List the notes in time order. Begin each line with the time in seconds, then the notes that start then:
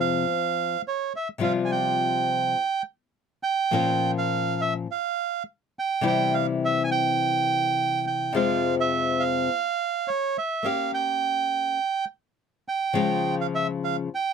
Already playing: F2 C3 F3 G#3 C4 F4
0.00 F5
0.88 C#5
1.16 E5
1.38 C3 F3 G3 C4 F4
1.43 F5
1.65 G#5
1.72 G5
3.43 G5
3.71 A#2 F3 A#3 C#4 F4
4.18 F5
4.61 E5
4.91 F5
5.79 G5
6.01 C3 E3 G3 C4 E4
6.07 G5
6.34 F5
6.65 E5
6.84 G#5
6.91 G5
8.07 G5
8.33 F2 C3 F3 G#3 C4 F4 F5
8.80 E5
9.20 F5
10.08 C#5
10.38 E5
10.63 A#3 C#4 G4 F5
10.94 G5
12.68 G5
12.93 C#3 F3 G#3 C#4 F4
13.41 F5
13.55 E5
13.84 F5
14.15 G5